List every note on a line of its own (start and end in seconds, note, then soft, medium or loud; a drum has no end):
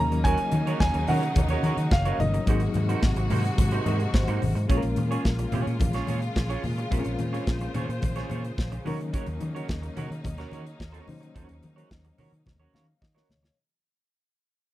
0.00 0.34 D#2 loud
0.00 2.45 C#3 medium
0.00 2.15 F#3 medium
0.00 2.45 F#3 medium
0.00 2.15 A#3 medium
0.00 4.66 A#3 medium
0.00 2.15 C#4 medium
0.00 2.16 D#4 medium
0.00 2.45 D#4 medium
0.00 2.16 A#4 medium
0.00 0.25 A#5 loud
0.12 muted clean electric guitar stroke soft
0.12 closed hi-hat medium
0.24 0.40 C#4 medium
0.24 0.40 F#4 medium
0.24 0.39 A#4 loud
0.24 0.38 C#5 loud
0.24 0.79 G#5 loud
0.24 kick loud
0.24 closed hi-hat medium
0.24 muted conga soft
0.37 muted clean electric guitar stroke soft
0.37 closed hi-hat medium
0.37 muted conga soft
0.52 0.71 D#3 medium
0.52 muted clean electric guitar stroke soft
0.52 closed hi-hat medium
0.52 high conga medium
0.67 0.79 C#4 medium
0.67 0.79 F#4 medium
0.67 0.79 A#4 medium
0.67 0.78 C#5 medium
0.67 closed hi-hat medium
0.80 0.90 D#2 loud
0.80 1.09 G#5 loud
0.80 kick loud
0.80 snare loud
0.80 muted conga soft
0.94 1.04 D#2 medium
0.94 muted clean electric guitar stroke soft
0.94 closed hi-hat medium
1.07 1.27 D#3 loud
1.07 1.23 C#4 medium
1.07 1.24 F#4 medium
1.07 1.23 A#4 medium
1.07 1.22 C#5 medium
1.07 1.94 F#5 loud
1.07 open hi-hat medium
1.07 high conga medium
1.07 low conga medium
1.23 muted clean electric guitar stroke medium
1.23 closed hi-hat soft
1.36 1.55 D#2 loud
1.36 muted clean electric guitar stroke medium
1.36 kick loud
1.36 closed hi-hat medium
1.36 muted conga medium
1.36 high conga loud
1.36 low conga loud
1.48 1.63 C#4 medium
1.48 1.64 F#4 medium
1.48 1.64 A#4 medium
1.48 1.65 C#5 medium
1.48 closed hi-hat medium
1.48 muted conga soft
1.63 1.73 D#3 loud
1.63 1.76 C#4 medium
1.63 1.76 F#4 medium
1.63 1.76 A#4 medium
1.63 1.76 C#5 medium
1.63 closed hi-hat medium
1.63 high conga medium
1.77 1.87 D#3 loud
1.77 muted clean electric guitar stroke medium
1.77 closed hi-hat medium
1.91 2.10 F#1 loud
1.91 2.11 F5 medium
1.91 muted clean electric guitar stroke soft
1.91 kick loud
1.91 snare loud
1.91 muted conga soft
1.91 high conga medium
2.05 2.18 C#4 medium
2.05 2.19 F#4 medium
2.05 2.19 A#4 medium
2.05 2.20 C#5 medium
2.05 closed hi-hat soft
2.05 muted conga soft
2.12 2.19 F5 medium
2.18 2.38 G1 medium
2.18 2.45 F#3 soft
2.18 2.46 A#3 soft
2.18 2.48 C#4 soft
2.18 2.47 D#4 soft
2.18 2.48 A#4 medium
2.18 4.10 D#5 medium
2.18 closed hi-hat medium
2.18 high conga medium
2.18 low conga medium
2.34 muted clean electric guitar stroke soft
2.34 closed hi-hat soft
2.46 2.66 G#1 loud
2.46 4.67 C3 medium
2.46 4.65 F#3 medium
2.46 4.67 G#3 medium
2.46 4.65 A#3 medium
2.46 2.62 A#3 loud
2.46 4.66 C4 medium
2.46 4.66 D#4 medium
2.46 2.62 D#4 medium
2.46 4.67 F#4 medium
2.46 2.61 F#4 loud
2.46 4.66 G#4 medium
2.46 2.61 C5 loud
2.46 kick loud
2.46 closed hi-hat medium
2.46 muted conga soft
2.60 muted clean electric guitar stroke soft
2.60 closed hi-hat soft
2.60 muted conga soft
2.74 2.93 G#2 loud
2.74 muted clean electric guitar stroke soft
2.74 closed hi-hat medium
2.74 high conga medium
2.89 3.01 A#3 medium
2.89 3.01 D#4 medium
2.89 3.01 F#4 medium
2.89 3.00 C5 medium
2.89 closed hi-hat medium
3.03 3.12 G#1 medium
3.03 kick loud
3.03 snare loud
3.03 muted conga soft
3.16 3.26 G#1 loud
3.16 muted clean electric guitar stroke medium
3.16 closed hi-hat medium
3.16 muted conga soft
3.30 3.49 G#2 medium
3.30 3.45 A#3 medium
3.30 3.44 D#4 medium
3.30 3.44 F#4 medium
3.30 3.43 C5 medium
3.30 open hi-hat medium
3.30 high conga medium
3.30 low conga medium
3.45 muted clean electric guitar stroke medium
3.45 closed hi-hat soft
3.58 3.77 G#2 loud
3.58 muted clean electric guitar stroke soft
3.58 kick loud
3.58 closed hi-hat loud
3.58 muted conga soft
3.58 high conga loud
3.58 low conga medium
3.71 3.84 A#3 soft
3.71 3.84 D#4 medium
3.71 3.84 F#4 medium
3.71 3.84 C5 medium
3.71 closed hi-hat soft
3.71 muted conga soft
3.86 4.05 G#2 loud
3.86 4.01 A#3 medium
3.86 4.00 D#4 medium
3.86 4.00 F#4 medium
3.86 3.99 C5 loud
3.86 4.12 D#5 medium
3.86 closed hi-hat medium
3.86 high conga medium
4.00 muted clean electric guitar stroke soft
4.00 closed hi-hat soft
4.14 4.23 G#1 loud
4.14 4.66 C5 medium
4.14 muted clean electric guitar stroke soft
4.14 kick loud
4.14 snare loud
4.14 muted conga soft
4.14 high conga medium
4.28 4.37 G#2 loud
4.28 4.40 A#3 medium
4.28 4.41 D#4 medium
4.28 4.41 F#4 medium
4.28 4.42 C5 medium
4.28 closed hi-hat medium
4.28 muted conga soft
4.41 4.51 G#1 loud
4.41 muted clean electric guitar stroke soft
4.41 open hi-hat medium
4.41 high conga medium
4.41 low conga medium
4.55 4.65 G#2 loud
4.55 muted clean electric guitar stroke soft
4.55 closed hi-hat medium
4.68 4.79 A#1 loud
4.68 13.53 C#3 medium
4.68 6.87 G#3 medium
4.68 8.82 G#3 medium
4.68 6.87 A#3 medium
4.68 6.89 A#3 medium
4.68 4.84 C#4 loud
4.68 6.88 C#4 medium
4.68 8.82 F4 medium
4.68 4.83 F4 medium
4.68 6.88 F4 medium
4.68 4.83 G#4 loud
4.68 4.77 G#4 medium
4.68 4.82 C#5 loud
4.68 kick loud
4.68 closed hi-hat medium
4.68 muted conga soft
4.77 6.92 A#4 medium
4.82 4.93 A#1 medium
4.82 muted clean electric guitar stroke soft
4.82 closed hi-hat soft
4.82 muted conga soft
4.96 5.16 A#2 loud
4.96 muted clean electric guitar stroke soft
4.96 closed hi-hat medium
4.96 high conga medium
5.11 5.23 C#4 medium
5.11 5.23 F4 medium
5.11 5.23 G#4 medium
5.11 5.22 C#5 medium
5.11 closed hi-hat medium
5.25 5.44 A#1 loud
5.25 muted clean electric guitar stroke soft
5.25 kick loud
5.25 snare loud
5.25 muted conga soft
5.39 muted clean electric guitar stroke soft
5.39 closed hi-hat medium
5.39 muted conga soft
5.52 5.62 A#2 medium
5.52 5.73 C#4 medium
5.52 5.67 F4 medium
5.52 5.66 G#4 medium
5.52 5.66 C#5 medium
5.52 closed hi-hat medium
5.52 high conga medium
5.52 low conga medium
5.67 5.76 A#2 loud
5.67 muted clean electric guitar stroke medium
5.67 closed hi-hat soft
5.80 5.99 A#1 loud
5.80 muted clean electric guitar stroke soft
5.80 kick loud
5.80 closed hi-hat loud
5.80 muted conga medium
5.80 high conga loud
5.80 low conga loud
5.93 6.07 C#4 medium
5.93 6.07 F4 medium
5.93 6.08 G#4 medium
5.93 6.08 C#5 medium
5.93 snare soft
5.93 closed hi-hat medium
5.93 muted conga soft
6.07 6.27 A#2 loud
6.07 6.19 C#4 medium
6.07 6.20 F4 medium
6.07 6.20 G#4 medium
6.07 6.20 C#5 medium
6.07 closed hi-hat medium
6.07 high conga medium
6.22 muted clean electric guitar stroke soft
6.22 closed hi-hat soft
6.35 6.55 A#1 loud
6.35 muted clean electric guitar stroke soft
6.35 kick loud
6.35 snare loud
6.35 high conga medium
6.50 6.62 C#4 medium
6.50 6.63 F4 medium
6.50 6.63 G#4 medium
6.50 6.63 C#5 medium
6.50 closed hi-hat soft
6.64 6.83 A#2 medium
6.64 muted clean electric guitar stroke soft
6.64 open hi-hat medium
6.64 high conga medium
6.64 low conga medium
6.78 muted clean electric guitar stroke medium
6.78 closed hi-hat soft
6.90 7.01 A#1 medium
6.90 8.81 G#3 medium
6.90 8.81 A#3 medium
6.90 6.98 C4 medium
6.90 7.11 C#4 medium
6.90 7.05 F4 medium
6.90 8.82 F4 medium
6.90 7.05 G#4 medium
6.90 8.83 A#4 medium
6.90 8.84 C5 medium
6.90 7.04 C#5 medium
6.90 kick loud
6.90 closed hi-hat medium
6.98 8.85 C#4 medium
7.04 7.15 A#1 medium
7.04 muted clean electric guitar stroke medium
7.04 closed hi-hat soft
7.04 muted conga soft
7.19 7.38 A#2 loud
7.19 muted clean electric guitar stroke soft
7.19 closed hi-hat medium
7.19 high conga medium
7.33 7.45 C#4 medium
7.33 7.45 F4 medium
7.33 7.45 G#4 medium
7.33 7.44 C#5 medium
7.33 closed hi-hat medium
7.47 7.66 A#1 loud
7.47 muted clean electric guitar stroke soft
7.47 kick loud
7.47 snare loud
7.47 muted conga soft
7.61 muted clean electric guitar stroke medium
7.61 closed hi-hat soft
7.61 muted conga soft
7.74 7.84 A#2 loud
7.74 7.89 C#4 medium
7.74 7.89 F4 medium
7.74 7.89 G#4 medium
7.74 7.88 C#5 loud
7.74 closed hi-hat medium
7.74 high conga medium
7.74 low conga medium
7.89 7.98 A#2 medium
7.89 muted clean electric guitar stroke soft
7.89 closed hi-hat soft
8.02 8.21 A#1 medium
8.02 muted clean electric guitar stroke soft
8.02 kick loud
8.02 closed hi-hat medium
8.02 muted conga soft
8.02 high conga loud
8.02 low conga loud
8.16 8.29 C#4 medium
8.16 8.30 F4 medium
8.16 8.30 G#4 medium
8.16 8.31 C#5 medium
8.16 snare soft
8.16 closed hi-hat medium
8.30 8.49 A#2 loud
8.30 8.42 C#4 medium
8.30 8.42 F4 medium
8.30 8.42 G#4 medium
8.30 8.42 C#5 medium
8.30 closed hi-hat medium
8.30 high conga medium
8.44 muted clean electric guitar stroke soft
8.44 closed hi-hat soft
8.58 8.77 A#1 loud
8.58 kick loud
8.58 snare loud
8.58 high conga medium
8.72 muted clean electric guitar stroke medium
8.72 closed hi-hat soft
8.72 muted conga soft
8.84 9.14 D#3 loud
8.84 11.03 F#3 medium
8.84 13.53 F#3 medium
8.84 13.53 A#3 medium
8.84 11.03 A#3 medium
8.84 9.00 C#4 medium
8.84 11.04 C#4 medium
8.84 13.53 D#4 medium
8.84 11.04 D#4 medium
8.84 9.00 F#4 loud
8.84 8.99 A#4 loud
8.84 11.05 A#4 medium
8.84 8.98 C#5 loud
8.84 open hi-hat medium
8.84 high conga medium
8.84 low conga medium
9.00 muted clean electric guitar stroke soft
9.00 closed hi-hat medium
9.13 9.28 C#4 medium
9.13 9.27 F#4 medium
9.13 9.27 A#4 medium
9.13 9.26 C#5 loud
9.13 kick loud
9.13 closed hi-hat medium
9.13 muted conga soft
9.26 9.37 D#2 medium
9.26 muted clean electric guitar stroke medium
9.26 closed hi-hat soft
9.26 muted conga soft
9.41 9.60 D#3 medium
9.41 muted clean electric guitar stroke soft
9.41 closed hi-hat medium
9.41 high conga medium
9.55 9.67 C#4 medium
9.55 9.67 F#4 medium
9.55 9.67 A#4 medium
9.55 9.66 C#5 medium
9.55 closed hi-hat medium
9.69 9.88 D#2 loud
9.69 muted clean electric guitar stroke soft
9.69 kick loud
9.69 snare loud
9.69 muted conga soft
9.82 muted clean electric guitar stroke soft
9.82 closed hi-hat soft
9.96 10.06 D#3 loud
9.96 10.11 C#4 medium
9.96 10.11 F#4 medium
9.96 10.10 A#4 medium
9.96 10.10 C#5 medium
9.96 closed hi-hat medium
9.96 high conga medium
9.96 low conga medium
10.10 10.20 D#3 loud
10.10 muted clean electric guitar stroke soft
10.10 closed hi-hat soft
10.24 10.43 D#2 loud
10.24 muted clean electric guitar stroke soft
10.24 kick loud
10.24 closed hi-hat medium
10.24 muted conga soft
10.24 high conga medium
10.24 low conga medium
10.38 10.51 C#4 medium
10.38 10.51 F#4 medium
10.38 10.52 A#4 medium
10.38 10.52 C#5 medium
10.38 snare soft
10.38 closed hi-hat soft
10.38 muted conga soft
10.51 10.71 D#3 medium
10.51 10.63 C#4 medium
10.51 10.64 F#4 medium
10.51 10.64 A#4 medium
10.51 10.64 C#5 medium
10.51 closed hi-hat medium
10.51 high conga medium
10.65 muted clean electric guitar stroke medium
10.65 closed hi-hat soft
10.80 10.99 D#2 medium
10.80 muted clean electric guitar stroke soft
10.80 kick loud
10.80 snare loud
10.80 high conga medium
10.92 11.06 C#4 medium
10.92 11.07 F#4 medium
10.92 11.07 A#4 medium
10.92 11.07 C#5 medium
10.92 closed hi-hat soft
10.92 muted conga soft
11.06 11.27 D#3 loud
11.06 13.25 F#3 medium
11.06 13.25 A#3 medium
11.06 13.25 C#4 medium
11.06 13.26 D#4 medium
11.06 13.26 C5 medium
11.06 muted clean electric guitar stroke soft
11.06 open hi-hat medium
11.06 high conga medium
11.06 low conga medium
11.21 muted clean electric guitar stroke soft
11.21 closed hi-hat soft
11.35 11.45 D#2 loud
11.35 11.55 C#4 medium
11.35 11.49 F#4 medium
11.35 11.48 A#4 medium
11.35 11.47 C#5 medium
11.35 kick loud
11.35 closed hi-hat medium
11.35 muted conga soft
11.48 11.59 D#2 medium
11.48 muted clean electric guitar stroke soft
11.48 closed hi-hat soft
11.48 muted conga soft
11.62 11.82 D#3 loud
11.62 muted clean electric guitar stroke soft
11.62 closed hi-hat medium
11.62 high conga medium
11.76 11.89 C#4 soft
11.76 11.88 F#4 medium
11.76 11.88 A#4 medium
11.76 11.88 C#5 medium
11.76 closed hi-hat medium
11.90 12.10 D#2 medium
11.90 muted clean electric guitar stroke soft
11.90 kick loud
11.90 snare loud
11.90 muted conga soft
12.05 muted clean electric guitar stroke medium
12.05 closed hi-hat soft
12.05 muted conga soft
12.18 12.28 D#3 medium
12.18 12.33 C#4 medium
12.18 12.33 F#4 medium
12.18 12.32 A#4 medium
12.18 12.32 C#5 loud
12.18 open hi-hat medium
12.18 high conga medium
12.18 low conga medium
12.32 12.42 D#3 medium
12.32 muted clean electric guitar stroke soft
12.32 closed hi-hat soft
12.46 12.65 D#2 loud
12.46 muted clean electric guitar stroke soft
12.46 kick loud
12.46 snare medium
12.46 high conga loud
12.46 low conga loud
12.60 12.73 C#4 medium
12.60 12.73 F#4 medium
12.60 12.74 A#4 medium
12.60 12.74 C#5 medium
12.60 muted conga soft
12.74 12.93 D#3 medium
12.74 12.85 C#4 medium
12.74 12.85 F#4 medium
12.74 12.86 A#4 medium
12.74 12.86 C#5 medium
12.74 13.00 F5 medium
12.74 snare medium
12.74 high conga medium
12.88 muted clean electric guitar stroke soft
13.01 13.21 D#3 loud
13.01 13.15 D#5 medium
13.01 muted clean electric guitar stroke soft
13.01 kick loud
13.01 snare medium
13.01 muted conga soft
13.01 high conga medium
13.15 13.28 C#4 medium
13.15 13.29 F#4 medium
13.15 13.29 A#4 medium
13.15 13.30 C#5 medium
13.15 13.55 C#5 medium
13.15 snare medium
13.15 muted conga soft
13.29 13.48 D2 medium
13.29 muted clean electric guitar stroke soft
13.29 snare loud
13.29 high conga medium
13.29 low conga medium
13.43 muted clean electric guitar stroke medium
13.43 snare medium